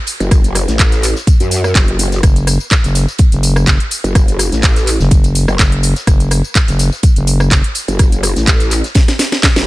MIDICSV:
0, 0, Header, 1, 4, 480
1, 0, Start_track
1, 0, Key_signature, 3, "minor"
1, 0, Tempo, 480000
1, 313, Time_signature, 4, 2, 24, 8
1, 9668, End_track
2, 0, Start_track
2, 0, Title_t, "FM bass"
2, 0, Program_c, 0, 39
2, 2233, Note_on_c, 0, 30, 97
2, 2582, Note_off_c, 0, 30, 0
2, 2842, Note_on_c, 0, 30, 98
2, 3062, Note_off_c, 0, 30, 0
2, 3322, Note_on_c, 0, 30, 95
2, 3782, Note_off_c, 0, 30, 0
2, 5003, Note_on_c, 0, 30, 97
2, 5462, Note_off_c, 0, 30, 0
2, 5593, Note_on_c, 0, 30, 99
2, 5942, Note_off_c, 0, 30, 0
2, 6073, Note_on_c, 0, 30, 98
2, 6422, Note_off_c, 0, 30, 0
2, 6683, Note_on_c, 0, 30, 101
2, 6902, Note_off_c, 0, 30, 0
2, 7163, Note_on_c, 0, 30, 97
2, 7622, Note_off_c, 0, 30, 0
2, 9668, End_track
3, 0, Start_track
3, 0, Title_t, "Wobble bass"
3, 0, Program_c, 1, 39
3, 204, Note_on_c, 1, 30, 101
3, 662, Note_off_c, 1, 30, 0
3, 683, Note_on_c, 1, 33, 99
3, 1142, Note_off_c, 1, 33, 0
3, 1403, Note_on_c, 1, 42, 99
3, 1736, Note_off_c, 1, 42, 0
3, 1753, Note_on_c, 1, 30, 96
3, 2215, Note_off_c, 1, 30, 0
3, 4041, Note_on_c, 1, 30, 100
3, 4501, Note_off_c, 1, 30, 0
3, 4522, Note_on_c, 1, 33, 97
3, 4982, Note_off_c, 1, 33, 0
3, 5483, Note_on_c, 1, 30, 100
3, 5576, Note_off_c, 1, 30, 0
3, 7883, Note_on_c, 1, 30, 100
3, 8342, Note_off_c, 1, 30, 0
3, 8362, Note_on_c, 1, 33, 96
3, 8822, Note_off_c, 1, 33, 0
3, 9563, Note_on_c, 1, 30, 99
3, 9668, Note_off_c, 1, 30, 0
3, 9668, End_track
4, 0, Start_track
4, 0, Title_t, "Drums"
4, 67, Note_on_c, 9, 51, 73
4, 74, Note_on_c, 9, 46, 116
4, 76, Note_on_c, 9, 54, 75
4, 167, Note_off_c, 9, 51, 0
4, 174, Note_off_c, 9, 46, 0
4, 176, Note_off_c, 9, 54, 0
4, 204, Note_on_c, 9, 42, 37
4, 206, Note_on_c, 9, 54, 32
4, 304, Note_off_c, 9, 42, 0
4, 306, Note_off_c, 9, 54, 0
4, 312, Note_on_c, 9, 51, 97
4, 313, Note_on_c, 9, 36, 126
4, 314, Note_on_c, 9, 37, 82
4, 314, Note_on_c, 9, 42, 77
4, 316, Note_on_c, 9, 54, 44
4, 412, Note_off_c, 9, 51, 0
4, 413, Note_off_c, 9, 36, 0
4, 414, Note_off_c, 9, 37, 0
4, 414, Note_off_c, 9, 42, 0
4, 416, Note_off_c, 9, 54, 0
4, 443, Note_on_c, 9, 42, 51
4, 446, Note_on_c, 9, 54, 32
4, 543, Note_off_c, 9, 42, 0
4, 546, Note_off_c, 9, 54, 0
4, 552, Note_on_c, 9, 51, 66
4, 553, Note_on_c, 9, 37, 71
4, 553, Note_on_c, 9, 46, 119
4, 556, Note_on_c, 9, 54, 78
4, 652, Note_off_c, 9, 51, 0
4, 653, Note_off_c, 9, 37, 0
4, 653, Note_off_c, 9, 46, 0
4, 656, Note_off_c, 9, 54, 0
4, 681, Note_on_c, 9, 38, 59
4, 683, Note_on_c, 9, 42, 36
4, 685, Note_on_c, 9, 54, 34
4, 781, Note_off_c, 9, 38, 0
4, 783, Note_off_c, 9, 42, 0
4, 785, Note_off_c, 9, 54, 0
4, 790, Note_on_c, 9, 38, 114
4, 791, Note_on_c, 9, 51, 84
4, 793, Note_on_c, 9, 36, 111
4, 793, Note_on_c, 9, 42, 76
4, 795, Note_on_c, 9, 54, 44
4, 796, Note_on_c, 9, 39, 120
4, 890, Note_off_c, 9, 38, 0
4, 891, Note_off_c, 9, 51, 0
4, 893, Note_off_c, 9, 36, 0
4, 893, Note_off_c, 9, 42, 0
4, 895, Note_off_c, 9, 54, 0
4, 896, Note_off_c, 9, 39, 0
4, 922, Note_on_c, 9, 38, 51
4, 922, Note_on_c, 9, 42, 52
4, 925, Note_on_c, 9, 54, 31
4, 1022, Note_off_c, 9, 38, 0
4, 1022, Note_off_c, 9, 42, 0
4, 1025, Note_off_c, 9, 54, 0
4, 1033, Note_on_c, 9, 46, 113
4, 1034, Note_on_c, 9, 51, 67
4, 1035, Note_on_c, 9, 54, 75
4, 1036, Note_on_c, 9, 39, 37
4, 1133, Note_off_c, 9, 46, 0
4, 1134, Note_off_c, 9, 51, 0
4, 1135, Note_off_c, 9, 54, 0
4, 1136, Note_off_c, 9, 39, 0
4, 1161, Note_on_c, 9, 38, 49
4, 1165, Note_on_c, 9, 54, 35
4, 1261, Note_off_c, 9, 38, 0
4, 1265, Note_off_c, 9, 54, 0
4, 1273, Note_on_c, 9, 36, 125
4, 1273, Note_on_c, 9, 42, 75
4, 1275, Note_on_c, 9, 54, 43
4, 1279, Note_on_c, 9, 51, 80
4, 1373, Note_off_c, 9, 36, 0
4, 1373, Note_off_c, 9, 42, 0
4, 1375, Note_off_c, 9, 54, 0
4, 1379, Note_off_c, 9, 51, 0
4, 1403, Note_on_c, 9, 42, 52
4, 1405, Note_on_c, 9, 51, 41
4, 1405, Note_on_c, 9, 54, 31
4, 1503, Note_off_c, 9, 42, 0
4, 1505, Note_off_c, 9, 51, 0
4, 1505, Note_off_c, 9, 54, 0
4, 1512, Note_on_c, 9, 46, 109
4, 1515, Note_on_c, 9, 54, 77
4, 1520, Note_on_c, 9, 51, 77
4, 1612, Note_off_c, 9, 46, 0
4, 1615, Note_off_c, 9, 54, 0
4, 1620, Note_off_c, 9, 51, 0
4, 1642, Note_on_c, 9, 37, 80
4, 1645, Note_on_c, 9, 54, 34
4, 1742, Note_off_c, 9, 37, 0
4, 1745, Note_off_c, 9, 54, 0
4, 1752, Note_on_c, 9, 42, 80
4, 1753, Note_on_c, 9, 36, 113
4, 1754, Note_on_c, 9, 51, 98
4, 1755, Note_on_c, 9, 54, 44
4, 1756, Note_on_c, 9, 39, 121
4, 1758, Note_on_c, 9, 38, 123
4, 1852, Note_off_c, 9, 42, 0
4, 1853, Note_off_c, 9, 36, 0
4, 1854, Note_off_c, 9, 51, 0
4, 1855, Note_off_c, 9, 54, 0
4, 1856, Note_off_c, 9, 39, 0
4, 1858, Note_off_c, 9, 38, 0
4, 1882, Note_on_c, 9, 42, 53
4, 1982, Note_off_c, 9, 42, 0
4, 1990, Note_on_c, 9, 51, 73
4, 1992, Note_on_c, 9, 46, 115
4, 1994, Note_on_c, 9, 54, 79
4, 2090, Note_off_c, 9, 51, 0
4, 2092, Note_off_c, 9, 46, 0
4, 2094, Note_off_c, 9, 54, 0
4, 2122, Note_on_c, 9, 42, 37
4, 2124, Note_on_c, 9, 54, 33
4, 2126, Note_on_c, 9, 38, 48
4, 2222, Note_off_c, 9, 42, 0
4, 2224, Note_off_c, 9, 54, 0
4, 2226, Note_off_c, 9, 38, 0
4, 2232, Note_on_c, 9, 37, 87
4, 2232, Note_on_c, 9, 42, 77
4, 2233, Note_on_c, 9, 36, 124
4, 2234, Note_on_c, 9, 51, 90
4, 2234, Note_on_c, 9, 54, 46
4, 2332, Note_off_c, 9, 37, 0
4, 2332, Note_off_c, 9, 42, 0
4, 2333, Note_off_c, 9, 36, 0
4, 2334, Note_off_c, 9, 51, 0
4, 2334, Note_off_c, 9, 54, 0
4, 2362, Note_on_c, 9, 42, 54
4, 2364, Note_on_c, 9, 54, 32
4, 2462, Note_off_c, 9, 42, 0
4, 2464, Note_off_c, 9, 54, 0
4, 2472, Note_on_c, 9, 37, 72
4, 2472, Note_on_c, 9, 46, 108
4, 2472, Note_on_c, 9, 51, 68
4, 2474, Note_on_c, 9, 54, 83
4, 2572, Note_off_c, 9, 37, 0
4, 2572, Note_off_c, 9, 46, 0
4, 2572, Note_off_c, 9, 51, 0
4, 2574, Note_off_c, 9, 54, 0
4, 2603, Note_on_c, 9, 54, 37
4, 2703, Note_off_c, 9, 54, 0
4, 2706, Note_on_c, 9, 51, 86
4, 2712, Note_on_c, 9, 36, 109
4, 2712, Note_on_c, 9, 42, 76
4, 2714, Note_on_c, 9, 38, 110
4, 2714, Note_on_c, 9, 54, 46
4, 2715, Note_on_c, 9, 39, 113
4, 2806, Note_off_c, 9, 51, 0
4, 2812, Note_off_c, 9, 36, 0
4, 2812, Note_off_c, 9, 42, 0
4, 2814, Note_off_c, 9, 38, 0
4, 2814, Note_off_c, 9, 54, 0
4, 2815, Note_off_c, 9, 39, 0
4, 2836, Note_on_c, 9, 38, 41
4, 2842, Note_on_c, 9, 42, 51
4, 2844, Note_on_c, 9, 54, 33
4, 2936, Note_off_c, 9, 38, 0
4, 2942, Note_off_c, 9, 42, 0
4, 2944, Note_off_c, 9, 54, 0
4, 2951, Note_on_c, 9, 38, 49
4, 2952, Note_on_c, 9, 46, 110
4, 2954, Note_on_c, 9, 51, 70
4, 2954, Note_on_c, 9, 54, 77
4, 3051, Note_off_c, 9, 38, 0
4, 3052, Note_off_c, 9, 46, 0
4, 3054, Note_off_c, 9, 51, 0
4, 3054, Note_off_c, 9, 54, 0
4, 3077, Note_on_c, 9, 38, 39
4, 3084, Note_on_c, 9, 54, 36
4, 3177, Note_off_c, 9, 38, 0
4, 3184, Note_off_c, 9, 54, 0
4, 3184, Note_on_c, 9, 51, 99
4, 3192, Note_on_c, 9, 36, 123
4, 3192, Note_on_c, 9, 42, 78
4, 3194, Note_on_c, 9, 54, 46
4, 3284, Note_off_c, 9, 51, 0
4, 3292, Note_off_c, 9, 36, 0
4, 3292, Note_off_c, 9, 42, 0
4, 3294, Note_off_c, 9, 54, 0
4, 3322, Note_on_c, 9, 42, 50
4, 3324, Note_on_c, 9, 54, 32
4, 3422, Note_off_c, 9, 42, 0
4, 3424, Note_off_c, 9, 54, 0
4, 3432, Note_on_c, 9, 46, 106
4, 3433, Note_on_c, 9, 51, 68
4, 3434, Note_on_c, 9, 54, 81
4, 3532, Note_off_c, 9, 46, 0
4, 3533, Note_off_c, 9, 51, 0
4, 3534, Note_off_c, 9, 54, 0
4, 3562, Note_on_c, 9, 37, 84
4, 3564, Note_on_c, 9, 54, 35
4, 3662, Note_off_c, 9, 37, 0
4, 3664, Note_off_c, 9, 54, 0
4, 3668, Note_on_c, 9, 51, 93
4, 3671, Note_on_c, 9, 38, 113
4, 3672, Note_on_c, 9, 42, 80
4, 3673, Note_on_c, 9, 36, 112
4, 3675, Note_on_c, 9, 54, 47
4, 3676, Note_on_c, 9, 39, 121
4, 3768, Note_off_c, 9, 51, 0
4, 3771, Note_off_c, 9, 38, 0
4, 3772, Note_off_c, 9, 42, 0
4, 3773, Note_off_c, 9, 36, 0
4, 3775, Note_off_c, 9, 54, 0
4, 3776, Note_off_c, 9, 39, 0
4, 3803, Note_on_c, 9, 42, 51
4, 3903, Note_off_c, 9, 42, 0
4, 3910, Note_on_c, 9, 51, 64
4, 3912, Note_on_c, 9, 46, 110
4, 3915, Note_on_c, 9, 54, 81
4, 4010, Note_off_c, 9, 51, 0
4, 4012, Note_off_c, 9, 46, 0
4, 4015, Note_off_c, 9, 54, 0
4, 4043, Note_on_c, 9, 42, 35
4, 4045, Note_on_c, 9, 54, 34
4, 4143, Note_off_c, 9, 42, 0
4, 4145, Note_off_c, 9, 54, 0
4, 4152, Note_on_c, 9, 37, 89
4, 4152, Note_on_c, 9, 42, 78
4, 4153, Note_on_c, 9, 36, 119
4, 4155, Note_on_c, 9, 54, 48
4, 4160, Note_on_c, 9, 51, 98
4, 4252, Note_off_c, 9, 37, 0
4, 4252, Note_off_c, 9, 42, 0
4, 4253, Note_off_c, 9, 36, 0
4, 4255, Note_off_c, 9, 54, 0
4, 4260, Note_off_c, 9, 51, 0
4, 4282, Note_on_c, 9, 42, 54
4, 4285, Note_on_c, 9, 54, 33
4, 4382, Note_off_c, 9, 42, 0
4, 4385, Note_off_c, 9, 54, 0
4, 4392, Note_on_c, 9, 37, 74
4, 4392, Note_on_c, 9, 46, 112
4, 4395, Note_on_c, 9, 54, 85
4, 4403, Note_on_c, 9, 51, 68
4, 4492, Note_off_c, 9, 37, 0
4, 4492, Note_off_c, 9, 46, 0
4, 4495, Note_off_c, 9, 54, 0
4, 4503, Note_off_c, 9, 51, 0
4, 4522, Note_on_c, 9, 42, 38
4, 4525, Note_on_c, 9, 38, 58
4, 4525, Note_on_c, 9, 54, 37
4, 4622, Note_off_c, 9, 42, 0
4, 4625, Note_off_c, 9, 38, 0
4, 4625, Note_off_c, 9, 54, 0
4, 4629, Note_on_c, 9, 38, 127
4, 4632, Note_on_c, 9, 51, 92
4, 4633, Note_on_c, 9, 36, 103
4, 4633, Note_on_c, 9, 42, 81
4, 4635, Note_on_c, 9, 54, 48
4, 4636, Note_on_c, 9, 39, 114
4, 4729, Note_off_c, 9, 38, 0
4, 4732, Note_off_c, 9, 51, 0
4, 4733, Note_off_c, 9, 36, 0
4, 4733, Note_off_c, 9, 42, 0
4, 4735, Note_off_c, 9, 54, 0
4, 4736, Note_off_c, 9, 39, 0
4, 4763, Note_on_c, 9, 42, 55
4, 4765, Note_on_c, 9, 54, 33
4, 4769, Note_on_c, 9, 38, 51
4, 4863, Note_off_c, 9, 42, 0
4, 4865, Note_off_c, 9, 54, 0
4, 4869, Note_off_c, 9, 38, 0
4, 4872, Note_on_c, 9, 51, 72
4, 4873, Note_on_c, 9, 46, 105
4, 4875, Note_on_c, 9, 54, 85
4, 4876, Note_on_c, 9, 39, 35
4, 4972, Note_off_c, 9, 51, 0
4, 4973, Note_off_c, 9, 46, 0
4, 4975, Note_off_c, 9, 54, 0
4, 4976, Note_off_c, 9, 39, 0
4, 5000, Note_on_c, 9, 38, 48
4, 5005, Note_on_c, 9, 54, 36
4, 5100, Note_off_c, 9, 38, 0
4, 5105, Note_off_c, 9, 54, 0
4, 5111, Note_on_c, 9, 51, 88
4, 5112, Note_on_c, 9, 42, 79
4, 5113, Note_on_c, 9, 36, 116
4, 5115, Note_on_c, 9, 54, 47
4, 5211, Note_off_c, 9, 51, 0
4, 5212, Note_off_c, 9, 42, 0
4, 5213, Note_off_c, 9, 36, 0
4, 5215, Note_off_c, 9, 54, 0
4, 5242, Note_on_c, 9, 42, 53
4, 5244, Note_on_c, 9, 54, 34
4, 5245, Note_on_c, 9, 51, 44
4, 5342, Note_off_c, 9, 42, 0
4, 5344, Note_off_c, 9, 54, 0
4, 5345, Note_off_c, 9, 51, 0
4, 5352, Note_on_c, 9, 46, 101
4, 5352, Note_on_c, 9, 51, 68
4, 5354, Note_on_c, 9, 54, 84
4, 5452, Note_off_c, 9, 46, 0
4, 5452, Note_off_c, 9, 51, 0
4, 5454, Note_off_c, 9, 54, 0
4, 5482, Note_on_c, 9, 37, 86
4, 5484, Note_on_c, 9, 54, 35
4, 5582, Note_off_c, 9, 37, 0
4, 5584, Note_off_c, 9, 54, 0
4, 5590, Note_on_c, 9, 51, 95
4, 5593, Note_on_c, 9, 36, 107
4, 5593, Note_on_c, 9, 42, 81
4, 5595, Note_on_c, 9, 54, 50
4, 5597, Note_on_c, 9, 39, 120
4, 5601, Note_on_c, 9, 38, 122
4, 5690, Note_off_c, 9, 51, 0
4, 5693, Note_off_c, 9, 36, 0
4, 5693, Note_off_c, 9, 42, 0
4, 5695, Note_off_c, 9, 54, 0
4, 5697, Note_off_c, 9, 39, 0
4, 5701, Note_off_c, 9, 38, 0
4, 5722, Note_on_c, 9, 42, 55
4, 5822, Note_off_c, 9, 42, 0
4, 5833, Note_on_c, 9, 46, 105
4, 5835, Note_on_c, 9, 54, 86
4, 5838, Note_on_c, 9, 51, 74
4, 5933, Note_off_c, 9, 46, 0
4, 5935, Note_off_c, 9, 54, 0
4, 5938, Note_off_c, 9, 51, 0
4, 5962, Note_on_c, 9, 38, 45
4, 5963, Note_on_c, 9, 42, 38
4, 5965, Note_on_c, 9, 54, 37
4, 6062, Note_off_c, 9, 38, 0
4, 6063, Note_off_c, 9, 42, 0
4, 6065, Note_off_c, 9, 54, 0
4, 6073, Note_on_c, 9, 36, 116
4, 6073, Note_on_c, 9, 37, 81
4, 6073, Note_on_c, 9, 42, 86
4, 6076, Note_on_c, 9, 54, 48
4, 6077, Note_on_c, 9, 51, 91
4, 6173, Note_off_c, 9, 36, 0
4, 6173, Note_off_c, 9, 37, 0
4, 6173, Note_off_c, 9, 42, 0
4, 6176, Note_off_c, 9, 54, 0
4, 6177, Note_off_c, 9, 51, 0
4, 6203, Note_on_c, 9, 42, 57
4, 6205, Note_on_c, 9, 54, 33
4, 6303, Note_off_c, 9, 42, 0
4, 6305, Note_off_c, 9, 54, 0
4, 6308, Note_on_c, 9, 51, 72
4, 6313, Note_on_c, 9, 37, 71
4, 6313, Note_on_c, 9, 46, 105
4, 6315, Note_on_c, 9, 54, 88
4, 6408, Note_off_c, 9, 51, 0
4, 6413, Note_off_c, 9, 37, 0
4, 6413, Note_off_c, 9, 46, 0
4, 6415, Note_off_c, 9, 54, 0
4, 6444, Note_on_c, 9, 54, 37
4, 6544, Note_off_c, 9, 54, 0
4, 6552, Note_on_c, 9, 42, 81
4, 6554, Note_on_c, 9, 36, 102
4, 6554, Note_on_c, 9, 38, 115
4, 6554, Note_on_c, 9, 51, 85
4, 6554, Note_on_c, 9, 54, 49
4, 6556, Note_on_c, 9, 39, 114
4, 6652, Note_off_c, 9, 42, 0
4, 6654, Note_off_c, 9, 36, 0
4, 6654, Note_off_c, 9, 38, 0
4, 6654, Note_off_c, 9, 51, 0
4, 6654, Note_off_c, 9, 54, 0
4, 6656, Note_off_c, 9, 39, 0
4, 6682, Note_on_c, 9, 42, 58
4, 6683, Note_on_c, 9, 38, 42
4, 6684, Note_on_c, 9, 54, 34
4, 6782, Note_off_c, 9, 42, 0
4, 6783, Note_off_c, 9, 38, 0
4, 6784, Note_off_c, 9, 54, 0
4, 6792, Note_on_c, 9, 46, 100
4, 6794, Note_on_c, 9, 38, 44
4, 6795, Note_on_c, 9, 54, 81
4, 6796, Note_on_c, 9, 51, 66
4, 6892, Note_off_c, 9, 46, 0
4, 6894, Note_off_c, 9, 38, 0
4, 6895, Note_off_c, 9, 54, 0
4, 6896, Note_off_c, 9, 51, 0
4, 6924, Note_on_c, 9, 54, 37
4, 6931, Note_on_c, 9, 38, 38
4, 7024, Note_off_c, 9, 54, 0
4, 7030, Note_on_c, 9, 51, 83
4, 7031, Note_off_c, 9, 38, 0
4, 7033, Note_on_c, 9, 42, 83
4, 7034, Note_on_c, 9, 36, 119
4, 7035, Note_on_c, 9, 54, 49
4, 7130, Note_off_c, 9, 51, 0
4, 7133, Note_off_c, 9, 42, 0
4, 7134, Note_off_c, 9, 36, 0
4, 7135, Note_off_c, 9, 54, 0
4, 7163, Note_on_c, 9, 42, 56
4, 7165, Note_on_c, 9, 54, 34
4, 7263, Note_off_c, 9, 42, 0
4, 7265, Note_off_c, 9, 54, 0
4, 7272, Note_on_c, 9, 51, 67
4, 7273, Note_on_c, 9, 46, 100
4, 7275, Note_on_c, 9, 54, 84
4, 7372, Note_off_c, 9, 51, 0
4, 7373, Note_off_c, 9, 46, 0
4, 7375, Note_off_c, 9, 54, 0
4, 7402, Note_on_c, 9, 37, 85
4, 7404, Note_on_c, 9, 54, 36
4, 7502, Note_off_c, 9, 37, 0
4, 7504, Note_off_c, 9, 54, 0
4, 7513, Note_on_c, 9, 42, 87
4, 7514, Note_on_c, 9, 36, 106
4, 7515, Note_on_c, 9, 54, 49
4, 7516, Note_on_c, 9, 38, 113
4, 7516, Note_on_c, 9, 39, 122
4, 7520, Note_on_c, 9, 51, 95
4, 7613, Note_off_c, 9, 42, 0
4, 7614, Note_off_c, 9, 36, 0
4, 7615, Note_off_c, 9, 54, 0
4, 7616, Note_off_c, 9, 38, 0
4, 7616, Note_off_c, 9, 39, 0
4, 7620, Note_off_c, 9, 51, 0
4, 7642, Note_on_c, 9, 42, 58
4, 7742, Note_off_c, 9, 42, 0
4, 7747, Note_on_c, 9, 51, 73
4, 7753, Note_on_c, 9, 46, 105
4, 7755, Note_on_c, 9, 54, 87
4, 7847, Note_off_c, 9, 51, 0
4, 7852, Note_off_c, 9, 46, 0
4, 7855, Note_off_c, 9, 54, 0
4, 7883, Note_on_c, 9, 42, 38
4, 7885, Note_on_c, 9, 54, 37
4, 7983, Note_off_c, 9, 42, 0
4, 7985, Note_off_c, 9, 54, 0
4, 7991, Note_on_c, 9, 51, 92
4, 7993, Note_on_c, 9, 37, 79
4, 7993, Note_on_c, 9, 42, 88
4, 7994, Note_on_c, 9, 36, 118
4, 7995, Note_on_c, 9, 54, 48
4, 8091, Note_off_c, 9, 51, 0
4, 8093, Note_off_c, 9, 37, 0
4, 8093, Note_off_c, 9, 42, 0
4, 8094, Note_off_c, 9, 36, 0
4, 8095, Note_off_c, 9, 54, 0
4, 8123, Note_on_c, 9, 42, 58
4, 8125, Note_on_c, 9, 54, 34
4, 8223, Note_off_c, 9, 42, 0
4, 8225, Note_off_c, 9, 54, 0
4, 8233, Note_on_c, 9, 37, 68
4, 8233, Note_on_c, 9, 46, 107
4, 8235, Note_on_c, 9, 54, 87
4, 8236, Note_on_c, 9, 51, 69
4, 8333, Note_off_c, 9, 37, 0
4, 8333, Note_off_c, 9, 46, 0
4, 8335, Note_off_c, 9, 54, 0
4, 8336, Note_off_c, 9, 51, 0
4, 8363, Note_on_c, 9, 42, 40
4, 8365, Note_on_c, 9, 54, 36
4, 8367, Note_on_c, 9, 38, 53
4, 8463, Note_off_c, 9, 42, 0
4, 8465, Note_off_c, 9, 54, 0
4, 8467, Note_off_c, 9, 38, 0
4, 8470, Note_on_c, 9, 38, 127
4, 8472, Note_on_c, 9, 51, 98
4, 8473, Note_on_c, 9, 42, 88
4, 8474, Note_on_c, 9, 36, 104
4, 8475, Note_on_c, 9, 54, 46
4, 8477, Note_on_c, 9, 39, 125
4, 8570, Note_off_c, 9, 38, 0
4, 8572, Note_off_c, 9, 51, 0
4, 8573, Note_off_c, 9, 42, 0
4, 8574, Note_off_c, 9, 36, 0
4, 8575, Note_off_c, 9, 54, 0
4, 8577, Note_off_c, 9, 39, 0
4, 8596, Note_on_c, 9, 38, 52
4, 8603, Note_on_c, 9, 42, 56
4, 8605, Note_on_c, 9, 54, 33
4, 8696, Note_off_c, 9, 38, 0
4, 8703, Note_off_c, 9, 42, 0
4, 8705, Note_off_c, 9, 54, 0
4, 8712, Note_on_c, 9, 46, 101
4, 8712, Note_on_c, 9, 51, 72
4, 8715, Note_on_c, 9, 54, 82
4, 8716, Note_on_c, 9, 39, 37
4, 8811, Note_off_c, 9, 51, 0
4, 8812, Note_off_c, 9, 46, 0
4, 8815, Note_off_c, 9, 54, 0
4, 8816, Note_off_c, 9, 39, 0
4, 8842, Note_on_c, 9, 42, 41
4, 8843, Note_on_c, 9, 38, 50
4, 8844, Note_on_c, 9, 54, 36
4, 8942, Note_off_c, 9, 42, 0
4, 8943, Note_off_c, 9, 38, 0
4, 8944, Note_off_c, 9, 54, 0
4, 8945, Note_on_c, 9, 51, 84
4, 8953, Note_on_c, 9, 36, 118
4, 8953, Note_on_c, 9, 38, 65
4, 8953, Note_on_c, 9, 42, 84
4, 8955, Note_on_c, 9, 54, 49
4, 9045, Note_off_c, 9, 51, 0
4, 9053, Note_off_c, 9, 36, 0
4, 9053, Note_off_c, 9, 38, 0
4, 9053, Note_off_c, 9, 42, 0
4, 9055, Note_off_c, 9, 54, 0
4, 9083, Note_on_c, 9, 38, 59
4, 9083, Note_on_c, 9, 42, 56
4, 9084, Note_on_c, 9, 51, 43
4, 9085, Note_on_c, 9, 54, 33
4, 9183, Note_off_c, 9, 38, 0
4, 9183, Note_off_c, 9, 42, 0
4, 9184, Note_off_c, 9, 51, 0
4, 9185, Note_off_c, 9, 54, 0
4, 9189, Note_on_c, 9, 51, 66
4, 9193, Note_on_c, 9, 38, 76
4, 9193, Note_on_c, 9, 46, 100
4, 9195, Note_on_c, 9, 54, 80
4, 9289, Note_off_c, 9, 51, 0
4, 9293, Note_off_c, 9, 38, 0
4, 9293, Note_off_c, 9, 46, 0
4, 9295, Note_off_c, 9, 54, 0
4, 9323, Note_on_c, 9, 38, 71
4, 9323, Note_on_c, 9, 42, 39
4, 9325, Note_on_c, 9, 54, 36
4, 9423, Note_off_c, 9, 38, 0
4, 9423, Note_off_c, 9, 42, 0
4, 9425, Note_off_c, 9, 54, 0
4, 9427, Note_on_c, 9, 38, 108
4, 9433, Note_off_c, 9, 38, 0
4, 9433, Note_on_c, 9, 36, 106
4, 9433, Note_on_c, 9, 38, 90
4, 9433, Note_on_c, 9, 42, 89
4, 9434, Note_on_c, 9, 51, 77
4, 9435, Note_on_c, 9, 54, 49
4, 9437, Note_on_c, 9, 39, 127
4, 9533, Note_off_c, 9, 36, 0
4, 9533, Note_off_c, 9, 38, 0
4, 9533, Note_off_c, 9, 42, 0
4, 9534, Note_off_c, 9, 51, 0
4, 9535, Note_off_c, 9, 54, 0
4, 9537, Note_off_c, 9, 39, 0
4, 9563, Note_on_c, 9, 38, 80
4, 9563, Note_on_c, 9, 42, 57
4, 9565, Note_on_c, 9, 54, 33
4, 9567, Note_off_c, 9, 38, 0
4, 9567, Note_on_c, 9, 38, 46
4, 9663, Note_off_c, 9, 42, 0
4, 9665, Note_off_c, 9, 54, 0
4, 9667, Note_off_c, 9, 38, 0
4, 9668, End_track
0, 0, End_of_file